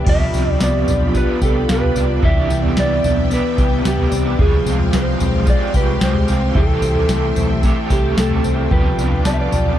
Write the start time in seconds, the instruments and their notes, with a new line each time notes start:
Already playing: clean electric guitar B3 D4
0.04 fingered electric bass C2, overdriven electric guitar C3 F3 B3, clean electric guitar F3 G4, string machine F4 G4 D5 B5, celesta G5, kick, floor tom, crash
0.09 overdriven electric guitar D4 F4 G4, clean electric guitar E5
0.26 celesta B5
0.34 fingered electric bass C2, clean electric guitar D4, tambourine
0.47 floor tom
0.52 clean electric guitar D5
0.60 fingered electric bass C2, clean electric guitar B3 D5, snare, tambourine
0.88 fingered electric bass B1, clean electric guitar D4, floor tom, tambourine
1.01 floor tom
1.13 overdriven electric guitar B3 D4 F4, clean electric guitar B3 B4, kick, tambourine
1.18 overdriven electric guitar G4
1.42 fingered electric bass C2, clean electric guitar G4 A4, kick, tambourine
1.68 fingered electric bass C2, overdriven electric guitar B3 D4 F4, clean electric guitar B3, celesta F5, snare, tambourine
1.72 overdriven electric guitar G4, clean electric guitar B4
1.82 floor tom
1.96 fingered electric bass C2, clean electric guitar D4, tambourine
2.21 fingered electric bass C2, overdriven electric guitar C3 B3 E4, clean electric guitar E3 G4, string machine B3 E5 G5, kick, floor tom
2.25 overdriven electric guitar D4 G4, clean electric guitar E5
2.50 fingered electric bass C2, clean electric guitar D4, tambourine
2.63 floor tom
2.77 fingered electric bass C2, clean electric guitar B3 D5, snare, tambourine
3.04 fingered electric bass B1, clean electric guitar D4, floor tom, tambourine
3.17 floor tom
3.29 overdriven electric guitar B3 D4 E4, clean electric guitar B3, tambourine
3.34 overdriven electric guitar G4, clean electric guitar B4
3.58 fingered electric bass C2, clean electric guitar G4, kick, tambourine
3.83 fingered electric bass C2, overdriven electric guitar B3 D4 E4, clean electric guitar B3, snare, tambourine
3.87 clean electric guitar G4, overdriven electric guitar G4
3.98 floor tom
4.12 fingered electric bass C2, clean electric guitar C4, tambourine
4.26 clean electric guitar D4
4.37 fingered electric bass C2, overdriven electric guitar C3 F3 F4, clean electric guitar F3, string machine G#3 F5 G5 C6, kick, floor tom
4.41 clean electric guitar G#4, overdriven electric guitar G#4
4.66 fingered electric bass C2, clean electric guitar C4, tambourine
4.80 floor tom
4.93 fingered electric bass C2, clean electric guitar G#3 C5, snare, tambourine
5.20 fingered electric bass B1, clean electric guitar C4, floor tom, tambourine
5.34 floor tom
5.46 overdriven electric guitar F3 F4 G#4, clean electric guitar G#3 D5, kick, tambourine
5.50 overdriven electric guitar G4
5.74 fingered electric bass C2, clean electric guitar G4 B4, kick, tambourine
6.00 fingered electric bass C2, overdriven electric guitar F3 F4 G#4, clean electric guitar G#3 C5, snare, tambourine
6.04 overdriven electric guitar G4
6.15 floor tom
6.28 fingered electric bass C2, clean electric guitar C4, tambourine
6.53 fingered electric bass C2, overdriven electric guitar C3 C4 E4, clean electric guitar E3 G4, string machine A4 E5, celesta E5, kick, floor tom
6.57 overdriven electric guitar G4 A4, clean electric guitar A4
6.82 fingered electric bass C2, clean electric guitar C4, tambourine
6.95 floor tom
7.09 fingered electric bass C2, clean electric guitar A3, snare, tambourine
7.36 fingered electric bass B1, clean electric guitar C4, floor tom, tambourine
7.62 clean electric guitar A3, overdriven electric guitar C4 E4 A4, kick, tambourine
7.66 overdriven electric guitar G4
7.90 fingered electric bass C2, clean electric guitar G4, kick, tambourine
8.16 fingered electric bass C2, clean electric guitar A3, overdriven electric guitar C4 E4 A4, snare, tambourine
8.20 overdriven electric guitar G4, clean electric guitar A4
8.31 floor tom
8.44 fingered electric bass C2, clean electric guitar C4, tambourine
8.71 fingered electric bass C2, clean electric guitar F3 G4 B4, overdriven electric guitar B3 D4 F4, string machine B4 F5 D6, celesta G5, kick, floor tom
8.76 overdriven electric guitar G4
8.98 fingered electric bass C2, clean electric guitar D4, tambourine
9.12 floor tom
9.25 fingered electric bass C2, clean electric guitar B3 D5, celesta A5, snare, tambourine
9.34 clean electric guitar E5
9.41 clean electric guitar D5
9.52 fingered electric bass B1, clean electric guitar D4, floor tom, tambourine
9.66 floor tom